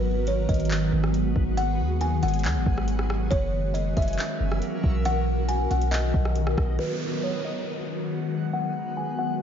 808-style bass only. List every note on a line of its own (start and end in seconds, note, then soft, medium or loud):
0.00 0.46 G#1 loud
0.49 0.91 G#1 loud
0.92 1.34 G#1 loud
1.36 1.81 G#1 loud
1.79 2.21 D#2 loud
2.23 2.46 G#1 loud
2.45 2.57 D#2 loud
2.55 2.66 G#1 medium
2.66 3.29 G#1 loud
3.32 3.94 F#1 loud
3.97 4.18 F#1 loud
4.40 4.61 F#1 loud
4.84 5.67 B1 loud
5.71 6.12 B1 loud
6.14 6.56 B1 loud
6.58 6.78 B1 loud